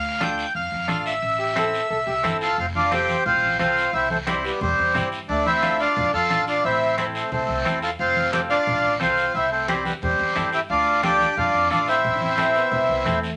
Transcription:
Already playing: upright bass D2, accordion F5
0.21 clean electric guitar D4 F4 A4, accordion G5, high conga, short guiro
0.38 short guiro
0.55 upright bass F2, accordion F5, high conga, long guiro
0.72 upright bass F2
0.88 upright bass A1, clean electric guitar D4 F4 A4, accordion F5, high conga, short guiro
1.06 accordion E5, short guiro
1.22 upright bass A1, high conga, long guiro
1.39 trombone G4
1.56 clean electric guitar C4 E4 A4, trombone A4, high conga, short guiro
1.74 short guiro
1.90 upright bass C2, trombone A4, high conga, long guiro
2.07 upright bass C2, trombone G4
2.24 upright bass G1, clean electric guitar C4 E4 A4, trombone A4, high conga, short guiro
2.41 accordion F4 A4, short guiro
2.58 upright bass F1, accordion C4 F4, high conga, long guiro
2.75 accordion D4 F4, high conga
2.91 clean electric guitar C4 F4 A4, accordion C4 G4, high conga, short guiro
3.09 high conga, short guiro
3.26 upright bass A1, accordion C4 F4, high conga, low conga, long guiro
3.42 upright bass A1
3.59 upright bass C2, clean electric guitar C4 F4 A4, accordion C4 F4, high conga, short guiro
3.77 short guiro
3.93 upright bass C2, accordion C4 E4, high conga, long guiro
4.10 accordion A3 C4, high conga
4.27 accordion G3 C4, clean electric guitar C4 E4 G4, high conga, short guiro
4.44 accordion G3 B3, short guiro
4.61 upright bass E2, accordion G3 C4, high conga, low conga, long guiro
4.78 upright bass E2
4.94 upright bass G2, clean electric guitar C4 E4 G4, high conga, low conga, short guiro
5.12 short guiro
5.29 upright bass D2, accordion A3 D4, high conga, long guiro
5.46 accordion C4 E4, high conga
5.62 clean electric guitar D4 F4 A4, high conga, short guiro
5.80 accordion D4 F4, short guiro
5.96 upright bass F2, high conga, low conga, long guiro
6.13 upright bass F2, accordion F4 A4
6.30 upright bass A1, clean electric guitar D4 F4 A4, high conga, short guiro
6.47 accordion D4 F4, short guiro
6.64 upright bass A1, accordion C4 E4, high conga, long guiro
6.98 clean electric guitar C4 E4 A4, accordion C4 E4, high conga, short guiro
7.14 accordion A3 C4, short guiro
7.32 upright bass C2, accordion A3 C4, high conga, low conga, long guiro
7.49 upright bass C2
7.65 upright bass E2, clean electric guitar C4 E4 A4, high conga, short guiro
7.82 accordion F4 A4, short guiro
7.99 upright bass F1, accordion C4 F4, high conga, long guiro
8.16 high conga
8.32 clean electric guitar C4 F4 A4, accordion C4 G4, high conga, short guiro
8.50 accordion D4 F4, short guiro
8.67 upright bass A1, high conga, low conga, long guiro
8.84 upright bass A1
9.00 upright bass C2, clean electric guitar C4 F4 A4, accordion C4 F4, high conga, short guiro
9.17 short guiro
9.34 upright bass C2, accordion C4 E4, high conga, long guiro
9.51 accordion A3 C4
9.68 accordion G3 C4, clean electric guitar C4 E4 G4, high conga, short guiro
9.85 accordion G3 B3, high conga, short guiro
10.02 upright bass E2, accordion G3 C4, high conga, low conga, long guiro
10.19 upright bass E2
10.36 upright bass G2, clean electric guitar C4 E4 A4, high conga, short guiro
10.53 accordion E4 G4, short guiro
10.69 upright bass D2, accordion D4 F4, high conga, long guiro
11.03 clean electric guitar D4 F4 A4, accordion D4 G4, high conga, short guiro
11.20 high conga, short guiro
11.37 upright bass F2, accordion D4 F4, high conga, low conga, long guiro
11.54 upright bass F2
11.70 upright bass A1, clean electric guitar D4 F4 A4, accordion D4 F4, high conga, short guiro
11.88 accordion C4 E4, short guiro
12.04 upright bass A1, high conga, low conga, long guiro
12.14 trombone D4
12.20 trombone C4, high conga
12.38 clean electric guitar C4 E4 A4, high conga, short guiro
12.55 trombone B3, short guiro
12.72 upright bass C2, high conga, low conga, long guiro
12.89 upright bass C2, trombone B3
13.05 upright bass E2, trombone A3, clean electric guitar C4 E4 A4, high conga, low conga, short guiro
13.23 short guiro

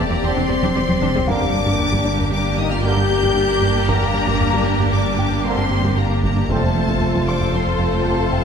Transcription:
Already playing: sub bass E1, ambient pad G3 C4 G4 D5, french horn section A3, violin section G4 D5
0.09 cello section E2, analog synth bass E2, synth arpeggio sound E3, viola section G3 C4, french horn section A#3, violin section A#5
0.23 double bass section E1, cello section E2, analog synth bass E2, trombone section D3 C4, synth arpeggio sound E3, viola section C4, french horn section C4, violin section C6
0.36 cello section E2, analog synth bass E2, synth arpeggio sound C3, viola section C4 D4
0.48 double bass section E1, cello section E2, analog synth bass E2, viola section G3 C4, synth arpeggio sound C4
0.62 cello section E2, analog synth bass E2, synth arpeggio sound C3, viola section C4 D4, taiko high
0.75 double bass section E1, cello section E2, analog synth bass E2, viola section G3 C4, synth arpeggio sound C4, taiko high
0.88 cello section E2, analog synth bass E2, synth arpeggio sound E3, viola section C4, taiko high
1.01 double bass section E1, cello section E2, analog synth bass E2, synth arpeggio sound C3, viola section C4 D4, taiko mid
1.14 analog synth bass E2, cello section E2, synth arpeggio sound E3, viola section G3 C4, taiko low
1.27 double bass section G1, sub bass G1, cello section G2, analog synth bass G2, trombone section D3 A#3, synth arpeggio sound G3, ambient pad G3 A#3 G4 D5, viola section A#3 D4, french horn section D4, violin section G4 A#4 D6, felt piano F5, taiko
1.41 analog synth bass G2, synth arpeggio sound G4, taiko low-mid
1.53 analog synth bass G3, synth arpeggio sound D4
1.66 analog synth bass G2, synth arpeggio sound G3, taiko
1.79 analog synth bass G2, synth arpeggio sound A#3, taiko low-mid
1.92 analog synth bass G2, synth arpeggio sound G3, taiko
2.05 analog synth bass G3, synth arpeggio sound D4
2.18 analog synth bass G2, synth arpeggio sound G4, taiko low-mid
2.31 analog synth bass G2, synth arpeggio sound G3, french horn section D4, violin section D6
2.45 analog synth bass G2
2.57 analog synth bass G2, synth arpeggio sound G3, french horn section D#4, violin section D#6
2.70 analog synth bass G2, synth arpeggio sound A#3, french horn section F4, violin section F6
2.83 analog synth bass G2, trombone section D3 A#3, synth arpeggio sound A#3, french horn section G4, violin section G6
2.97 analog synth bass G2, synth arpeggio sound G3
3.10 analog synth bass G2, synth arpeggio sound G4
3.23 analog synth bass G2, synth arpeggio sound G3, taiko
3.36 analog synth bass G2, synth arpeggio sound G4
3.49 analog synth bass G2, synth arpeggio sound A#3
3.62 analog synth bass G2, synth arpeggio sound G3, taiko
3.75 analog synth bass G2, synth arpeggio sound A#3
3.87 analog synth bass G2, trombone section D3 A#3, synth arpeggio sound G3, french horn section A#3, violin section A#5, felt piano A#5, taiko
4.01 analog synth bass G2, synth arpeggio sound G4, taiko low-mid
4.14 analog synth bass G3, synth arpeggio sound D4
4.27 analog synth bass G2, synth arpeggio sound G3, taiko
4.40 analog synth bass G2, synth arpeggio sound A#3, taiko low-mid
4.53 analog synth bass G2, synth arpeggio sound G3, taiko
4.66 analog synth bass G3, synth arpeggio sound D4
4.80 analog synth bass G2, synth arpeggio sound G4, taiko low-mid
4.92 analog synth bass G2, synth arpeggio sound G3, french horn section D4, violin section D6
5.06 analog synth bass G2
5.19 analog synth bass G2, synth arpeggio sound G3, felt piano G5
5.32 analog synth bass G2, synth arpeggio sound A#3
5.45 analog synth bass G2, trombone section D3 A#3, synth arpeggio sound A#3, french horn section C4, violin section C6
5.58 analog synth bass G2, synth arpeggio sound G3
5.71 analog synth bass G2, synth arpeggio sound G4
5.84 analog synth bass G2, synth arpeggio sound G3, taiko
5.97 analog synth bass G2, french horn section A#3, synth arpeggio sound G4, violin section A#5
6.10 analog synth bass G2, synth arpeggio sound A#3
6.23 analog synth bass G2, synth arpeggio sound G3, french horn section A#3, violin section A#5, taiko
6.36 analog synth bass G2, synth arpeggio sound A#3
6.48 double bass section F1, sub bass F1, analog synth bass F2, cello section F2, trombone section C3 C4, synth arpeggio sound F3, viola section A3 F4, french horn section A3, ambient pad A3 C4 F4 F5, violin section A4 C5 A5, taiko
6.62 analog synth bass F2, synth arpeggio sound F4, taiko low-mid
6.75 analog synth bass F3, synth arpeggio sound C4
6.88 analog synth bass F2, synth arpeggio sound F3, taiko
7.01 analog synth bass F2, synth arpeggio sound A3, taiko low-mid
7.14 analog synth bass F2, synth arpeggio sound F3, taiko
7.27 analog synth bass F3, synth arpeggio sound C4, french horn section D4, felt piano C6, violin section D6
7.40 analog synth bass F2, synth arpeggio sound F4, taiko low-mid
7.53 analog synth bass F2, synth arpeggio sound F3, french horn section C4, violin section C6
7.66 analog synth bass F2
7.79 analog synth bass F2, synth arpeggio sound F3, french horn section A3, violin section A5
7.93 analog synth bass F2, french horn section G3, synth arpeggio sound A3, violin section G5
8.06 analog synth bass F2, trombone section C3 C4, synth arpeggio sound A3, french horn section A3, violin section A5
8.19 analog synth bass F2, synth arpeggio sound F3
8.32 analog synth bass F2, synth arpeggio sound F4, felt piano G5

